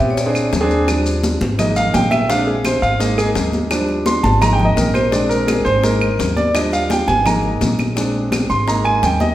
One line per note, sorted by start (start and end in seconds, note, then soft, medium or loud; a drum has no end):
0.00 0.49 A#2 medium
0.00 0.15 B3 medium
0.00 0.15 C4 medium
0.00 0.15 G4 medium
0.00 high bongo soft
0.00 high conga soft
0.00 maracas soft
0.10 0.17 C#5 medium
0.17 0.51 D5 medium
0.17 high bongo medium
0.17 high conga soft
0.17 maracas medium
0.26 0.51 C4 medium
0.26 0.51 D4 medium
0.26 0.51 G#4 medium
0.35 high bongo soft
0.35 high conga soft
0.35 claves medium
0.35 maracas medium
0.53 1.35 D#2 medium
0.53 high bongo medium
0.53 low bongo medium
0.53 high conga medium
0.53 maracas medium
0.61 0.86 C4 medium
0.61 0.86 D4 medium
0.61 0.86 G#4 loud
0.71 high bongo soft
0.71 high conga soft
0.71 maracas soft
0.87 1.38 F3 soft
0.87 1.38 G3 soft
0.87 1.38 D4 medium
0.87 high bongo medium
0.87 high conga soft
0.87 claves medium
0.87 maracas medium
1.06 high bongo soft
1.06 high conga soft
1.06 maracas medium
1.24 high bongo medium
1.24 high conga medium
1.24 maracas medium
1.41 1.90 G#1 medium
1.41 high conga loud
1.41 maracas soft
1.59 2.09 G#3 medium
1.59 2.09 A#3 soft
1.59 2.10 D#4 medium
1.59 1.76 D#5 medium
1.59 high bongo medium
1.59 high conga soft
1.59 low conga medium
1.59 claves medium
1.59 maracas medium
1.76 1.94 F5 medium
1.76 high bongo soft
1.76 high conga soft
1.76 low conga medium
1.76 maracas medium
1.94 2.77 A#1 medium
1.94 2.11 G5 medium
1.94 high bongo medium
1.94 low bongo medium
1.94 high conga medium
1.94 maracas medium
2.11 2.29 E5 loud
2.11 high bongo soft
2.11 high conga medium
2.11 claves medium
2.11 maracas soft
2.28 2.53 G#3 soft
2.28 2.53 C4 soft
2.28 2.53 D4 medium
2.28 2.47 F5 medium
2.28 high bongo medium
2.28 high conga soft
2.28 maracas medium
2.47 2.64 G#4 medium
2.47 high conga soft
2.65 2.82 C5 medium
2.65 high bongo medium
2.65 high conga medium
2.65 claves medium
2.65 maracas medium
2.82 3.32 G#1 medium
2.82 3.00 F5 medium
2.82 high bongo soft
2.82 high conga soft
2.82 maracas soft
2.99 3.67 G#3 medium
2.99 3.67 A#3 medium
2.99 3.68 D#4 medium
2.99 3.18 D#5 medium
2.99 high bongo medium
2.99 high conga soft
2.99 maracas medium
3.18 3.29 G#4 medium
3.18 high bongo soft
3.18 high conga soft
3.18 claves medium
3.18 maracas medium
3.35 4.18 D#2 medium
3.35 high bongo medium
3.35 low bongo medium
3.35 high conga soft
3.35 maracas medium
3.53 high bongo soft
3.53 high conga medium
3.53 maracas soft
3.71 4.38 F3 medium
3.71 4.38 G3 soft
3.71 4.38 D4 medium
3.71 high bongo medium
3.71 high conga soft
3.71 claves medium
3.71 maracas medium
3.88 high bongo soft
3.88 high conga soft
4.06 4.24 C6 medium
4.06 high bongo medium
4.06 high conga loud
4.06 maracas medium
4.23 4.73 G#1 loud
4.23 4.41 A5 medium
4.23 high conga medium
4.23 maracas soft
4.41 4.92 G#3 medium
4.41 4.92 A#3 soft
4.41 4.92 D#4 medium
4.41 4.53 A#5 loud
4.41 high bongo medium
4.41 high conga soft
4.41 low conga medium
4.41 claves medium
4.41 maracas medium
4.53 4.65 G5 medium
4.59 high bongo soft
4.59 high conga soft
4.59 low conga medium
4.65 4.77 D#5 medium
4.77 5.60 A#1 medium
4.77 4.94 A#4 medium
4.77 high bongo medium
4.77 low bongo medium
4.77 high conga medium
4.77 maracas medium
4.94 5.12 C5 medium
4.94 high bongo soft
4.94 high conga medium
4.94 claves medium
4.94 maracas soft
5.11 5.79 G#3 medium
5.11 5.80 C4 soft
5.11 5.80 D4 medium
5.11 5.30 D5 medium
5.11 high bongo medium
5.11 high conga soft
5.11 maracas medium
5.29 5.47 A#4 medium
5.29 high conga soft
5.29 maracas medium
5.47 5.65 G#4 medium
5.47 high bongo medium
5.47 high conga medium
5.47 claves medium
5.47 maracas medium
5.65 6.15 G#1 medium
5.65 5.83 C5 loud
5.65 high bongo soft
5.65 high conga soft
5.65 maracas soft
5.82 6.07 G#3 medium
5.82 6.07 A#3 soft
5.82 6.07 D#4 medium
5.82 6.33 A#4 medium
5.82 high bongo medium
5.82 high conga soft
5.82 maracas medium
6.01 high bongo soft
6.01 high conga soft
6.01 claves medium
6.19 7.02 D#2 loud
6.19 high bongo medium
6.19 low bongo medium
6.19 high conga soft
6.19 maracas medium
6.37 6.54 D5 loud
6.37 high bongo soft
6.37 high conga medium
6.37 maracas soft
6.54 7.05 F3 soft
6.54 7.05 G3 soft
6.54 7.05 D4 medium
6.54 6.72 D#5 medium
6.54 high bongo medium
6.54 high conga soft
6.54 claves medium
6.54 maracas medium
6.72 6.90 F5 medium
6.72 high bongo soft
6.72 high conga soft
6.72 maracas medium
6.90 7.08 G5 medium
6.90 high bongo medium
6.90 high conga medium
6.90 maracas medium
7.08 7.57 G#1 medium
7.08 7.25 G#5 medium
7.08 high conga medium
7.08 maracas soft
7.25 7.76 G#3 soft
7.25 7.76 A#3 soft
7.25 7.77 D#4 medium
7.25 7.59 A#5 medium
7.25 high bongo medium
7.25 high conga soft
7.25 low conga medium
7.25 claves medium
7.25 maracas medium
7.43 high bongo soft
7.43 high conga soft
7.61 8.44 A#1 medium
7.61 high bongo medium
7.61 low bongo medium
7.61 high conga medium
7.61 maracas medium
7.79 high bongo soft
7.79 high conga medium
7.79 claves medium
7.79 maracas soft
7.96 8.47 G#3 soft
7.96 8.47 C4 soft
7.96 8.47 D4 medium
7.96 high bongo medium
7.96 high conga soft
7.96 maracas medium
8.14 high conga soft
8.32 high bongo medium
8.32 high conga loud
8.32 claves medium
8.32 maracas medium
8.50 8.99 G#1 medium
8.50 8.67 C6 medium
8.50 high bongo soft
8.50 high conga soft
8.50 maracas soft
8.67 9.35 G#3 soft
8.67 9.35 A#3 soft
8.67 9.35 D#4 medium
8.67 8.85 A#5 medium
8.67 high bongo medium
8.67 high conga soft
8.67 maracas medium
8.85 9.02 G#5 medium
8.85 high bongo soft
8.85 high conga soft
8.85 claves medium
9.03 9.35 D#2 medium
9.03 9.20 G5 medium
9.03 high bongo medium
9.03 low bongo medium
9.03 high conga soft
9.03 maracas medium
9.20 9.35 D#5 loud
9.20 high bongo soft
9.20 high conga medium
9.20 maracas soft